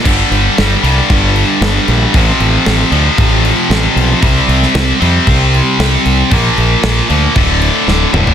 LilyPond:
<<
  \new Staff \with { instrumentName = "Distorted electric guitar" } { \clef bass \time 4/4 \key c \mixolydian \tempo 4 = 115 <g, d g>4. <g, d g>2~ <g, d g>8 | <f, c f>4. <f, c f>2~ <f, c f>8 | <c g c'>4. <c g c'>2~ <c g c'>8 | <bes, f bes>4. <bes, f bes>8 <d, a, d>4. <d, a, d>8 | }
  \new Staff \with { instrumentName = "Fingered electric bass" } { \clef bass \time 4/4 \key c \mixolydian g,,8 g,,8 g,,8 c,8 g,,4 g,,8 bes,,8 | a,,8 a,,8 a,,8 d,8 a,,4 a,,8 b,,8 | c,8 c,8 c,8 f,8 c,4 c,8 c,8 | bes,,8 bes,,8 bes,,8 d,8 d,,4 d,,8 d,,8 | }
  \new DrumStaff \with { instrumentName = "Drums" } \drummode { \time 4/4 <cymc bd>8 cymc8 <cymc sn>8 cymc8 <cymc bd>8 cymc8 <cymc sn>8 cymc8 | <cymc bd>8 cymc8 <cymc sn>8 cymc8 <cymc bd>8 cymc8 <cymc sn>8 cymc8 | <cymc bd>8 cymc16 sn16 <cymc sn>8 cymc8 <cymc bd>8 cymc8 <cymc sn>8 cymc8 | <cymc bd>8 cymc8 <cymc sn>8 cymc8 <cymc bd>8 cymc8 sn8 toml16 tomfh16 | }
>>